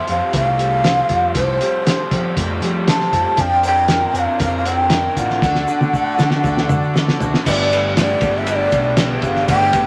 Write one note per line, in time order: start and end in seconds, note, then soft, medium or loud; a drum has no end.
0.00 0.61 F3 medium
0.00 3.36 F4 medium
0.00 3.36 G4 medium
0.00 3.36 A4 medium
0.00 0.84 C5 medium
0.00 3.36 C5 medium
0.07 0.20 F2 medium
0.07 0.56 G3 medium
0.07 0.33 G4 medium
0.07 0.34 A4 medium
0.07 0.33 F5 medium
0.07 closed hi-hat medium
0.12 0.33 C4 soft
0.33 1.00 C2 medium
0.33 0.59 F3 medium
0.33 1.61 A3 medium
0.33 0.59 C4 medium
0.33 0.59 G4 medium
0.33 0.56 A4 medium
0.33 1.33 F5 loud
0.33 kick loud
0.33 closed hi-hat medium
0.57 1.60 G3 medium
0.57 0.84 C4 soft
0.57 0.85 G4 soft
0.57 0.84 A4 soft
0.57 closed hi-hat medium
0.83 1.09 F3 medium
0.83 1.10 C4 medium
0.83 1.10 G4 medium
0.83 1.08 A4 medium
0.83 1.86 C5 medium
0.83 snare loud
0.83 closed hi-hat medium
1.09 1.32 F2 medium
1.09 1.34 C4 soft
1.09 2.65 F4 medium
1.09 1.35 G4 soft
1.09 1.35 A4 medium
1.09 kick medium
1.09 closed hi-hat medium
1.34 1.58 C2 loud
1.34 1.60 F3 medium
1.34 1.61 C4 medium
1.34 1.61 G4 medium
1.34 1.59 A4 loud
1.34 2.34 C5 medium
1.34 kick loud
1.34 closed hi-hat medium
1.60 2.10 G3 medium
1.60 1.85 C4 soft
1.60 1.86 G4 medium
1.60 1.86 A4 medium
1.60 closed hi-hat medium
1.85 2.11 F3 medium
1.85 2.12 C4 medium
1.85 2.12 G4 medium
1.85 2.10 A4 medium
1.85 2.86 C5 medium
1.85 snare loud
1.85 closed hi-hat loud
2.11 2.34 F3 medium
2.11 2.61 G3 medium
2.11 2.36 C4 medium
2.11 2.37 G4 medium
2.11 2.37 A4 medium
2.11 kick medium
2.11 closed hi-hat medium
2.37 2.59 F2 medium
2.37 2.63 F3 medium
2.37 3.39 A3 medium
2.37 2.63 C4 medium
2.37 2.62 G4 medium
2.37 2.59 A4 medium
2.37 kick loud
2.37 closed hi-hat loud
2.60 3.06 F3 medium
2.60 3.39 G3 medium
2.60 2.87 C4 soft
2.60 2.88 G4 medium
2.60 2.87 A4 medium
2.60 closed hi-hat medium
2.87 3.13 F3 medium
2.87 3.14 C4 medium
2.87 3.14 G4 medium
2.87 3.12 A4 medium
2.87 3.39 C5 medium
2.87 3.42 A5 loud
2.87 snare loud
2.87 closed hi-hat medium
3.01 snare soft
3.13 3.24 F2 medium
3.13 3.39 F4 medium
3.13 3.39 G4 medium
3.13 3.39 A4 soft
3.13 kick medium
3.13 closed hi-hat medium
3.17 3.37 C4 soft
3.37 4.04 F2 medium
3.37 3.64 F3 medium
3.37 3.64 C4 medium
3.37 5.40 D4 medium
3.37 3.64 D4 loud
3.37 5.40 F4 medium
3.37 5.40 A#4 medium
3.37 3.62 A#4 medium
3.37 5.40 C5 medium
3.37 3.65 G5 loud
3.37 kick loud
3.37 closed hi-hat medium
3.37 shaker medium
3.63 3.89 D4 soft
3.63 3.89 A#4 medium
3.63 closed hi-hat medium
3.63 shaker loud
3.67 3.88 C4 soft
3.67 4.20 G5 loud
3.77 shaker soft
3.88 4.14 F3 medium
3.88 4.15 C4 medium
3.88 4.14 D4 medium
3.88 4.12 A#4 medium
3.88 snare loud
3.88 closed hi-hat medium
3.88 shaker medium
4.13 4.25 F2 medium
4.13 4.38 C4 soft
4.13 4.38 D4 soft
4.13 4.39 A#4 medium
4.13 closed hi-hat medium
4.13 shaker medium
4.19 4.42 F5 medium
4.39 5.07 F2 medium
4.39 5.41 D3 medium
4.39 4.65 F3 medium
4.39 4.65 C4 medium
4.39 4.65 D4 medium
4.39 4.63 A#4 medium
4.39 kick loud
4.39 closed hi-hat medium
4.39 shaker medium
4.44 4.57 F5 loud
4.58 4.68 F5 medium
4.64 4.91 D4 soft
4.64 4.90 A#4 soft
4.64 5.19 G5 medium
4.64 closed hi-hat medium
4.64 shaker medium
4.68 4.90 C4 soft
4.89 5.16 F3 medium
4.89 5.17 C4 medium
4.89 5.17 D4 medium
4.89 5.15 A#4 medium
4.89 snare loud
4.89 closed hi-hat medium
4.89 shaker medium
5.16 5.39 A1 medium
5.16 5.42 C4 soft
5.16 5.41 D4 soft
5.16 5.42 F4 medium
5.16 5.42 A#4 medium
5.16 7.20 F#5 loud
5.16 kick medium
5.16 closed hi-hat medium
5.16 shaker medium
5.30 snare soft
5.30 shaker soft
5.42 5.65 D2 loud
5.42 5.67 D3 medium
5.42 5.68 A3 medium
5.42 5.68 D4 medium
5.42 7.44 D4 medium
5.42 5.68 F#4 medium
5.42 7.45 F#4 medium
5.42 5.67 A4 medium
5.42 7.45 A4 medium
5.42 7.45 D5 medium
5.42 kick loud
5.42 snare medium
5.42 shaker medium
5.55 snare soft
5.68 5.93 D4 soft
5.68 5.94 F#4 medium
5.68 5.93 A4 medium
5.68 shaker medium
5.81 high tom medium
5.81 shaker soft
5.92 6.18 A3 medium
5.92 6.19 D4 medium
5.92 6.18 F#4 medium
5.92 kick medium
5.92 shaker medium
5.96 6.16 A4 medium
6.18 6.41 D3 medium
6.18 6.43 D4 medium
6.18 6.44 F#4 medium
6.18 6.43 A4 medium
6.18 snare medium
6.18 shaker loud
6.31 snare medium
6.31 shaker soft
6.43 6.66 D2 medium
6.43 6.69 D3 medium
6.43 6.69 A3 medium
6.43 6.69 D4 medium
6.43 6.68 F#4 medium
6.43 6.66 A4 medium
6.43 kick loud
6.43 shaker medium
6.57 snare medium
6.67 7.13 D3 medium
6.67 6.94 D4 soft
6.67 6.95 F#4 medium
6.67 6.94 A4 medium
6.67 mid tom loud
6.67 shaker medium
6.83 shaker soft
6.94 7.20 A3 medium
6.94 7.20 D4 medium
6.94 7.21 F#4 medium
6.94 7.45 A4 medium
6.94 snare loud
6.94 shaker medium
7.08 snare medium
7.20 7.31 D2 medium
7.20 7.46 D4 medium
7.20 7.46 F#4 medium
7.20 7.45 A4 medium
7.20 floor tom medium
7.20 shaker medium
7.34 snare medium
7.45 8.12 G1 loud
7.45 7.71 G2 medium
7.45 7.71 D3 medium
7.45 7.94 G3 medium
7.45 7.71 A3 medium
7.45 7.72 B3 medium
7.45 7.71 D4 loud
7.45 9.87 D4 medium
7.45 9.87 G4 medium
7.45 7.70 G4 medium
7.45 9.87 A4 medium
7.45 9.87 B4 medium
7.45 7.52 D#5 medium
7.45 kick loud
7.45 crash loud
7.45 shaker loud
7.51 7.93 D5 loud
7.71 7.97 A3 soft
7.71 7.97 B3 soft
7.71 7.97 D4 medium
7.71 7.96 G4 medium
7.71 ride medium
7.71 shaker medium
7.95 8.22 G2 medium
7.95 8.22 D3 medium
7.95 8.23 G3 medium
7.95 8.23 A3 medium
7.95 snare loud
7.95 ride medium
7.95 shaker loud
7.99 8.23 B3 medium
7.99 8.22 D4 medium
7.99 8.22 G4 medium
7.99 8.40 D5 loud
8.21 8.66 G1 medium
8.21 8.45 G3 medium
8.21 8.48 D4 medium
8.21 8.48 G4 medium
8.21 kick loud
8.21 ride medium
8.21 shaker medium
8.25 8.46 A3 soft
8.25 8.48 B3 soft
8.38 8.53 E5 loud
8.45 8.97 G3 medium
8.45 8.73 A3 medium
8.45 8.73 B3 medium
8.45 ride medium
8.45 shaker loud
8.50 8.73 D4 medium
8.50 8.71 G4 medium
8.50 8.57 D#5 loud
8.56 9.00 D5 loud
8.72 9.17 B1 medium
8.72 8.98 B3 soft
8.72 8.98 D4 medium
8.72 8.98 G4 medium
8.72 kick medium
8.72 ride medium
8.72 shaker medium
8.77 8.97 A3 soft
8.97 9.23 G2 medium
8.97 9.23 D3 medium
8.97 9.25 G3 medium
8.97 9.23 A3 medium
8.97 9.24 B3 medium
8.97 9.23 D4 medium
8.97 9.22 G4 medium
8.97 snare loud
8.97 ride loud
8.97 shaker loud
9.18 9.27 E5 medium
9.18 ride medium
9.23 9.45 G1 medium
9.23 9.48 G3 medium
9.23 9.48 A3 soft
9.23 9.49 B3 soft
9.23 9.49 D4 medium
9.23 9.48 G4 medium
9.23 9.49 F5 loud
9.23 kick medium
9.23 shaker medium
9.36 snare soft
9.48 9.71 G1 loud
9.48 9.74 G2 medium
9.48 9.74 D3 medium
9.48 9.87 G3 loud
9.48 9.74 A3 medium
9.48 9.74 B3 medium
9.48 9.73 D4 medium
9.48 9.72 G4 loud
9.48 9.87 G5 loud
9.48 kick loud
9.48 ride loud
9.48 shaker loud
9.73 9.87 G1 medium
9.73 9.87 A3 soft
9.73 9.87 B3 medium
9.73 9.87 D4 medium
9.73 9.87 G4 medium
9.73 kick medium
9.73 ride medium
9.73 shaker medium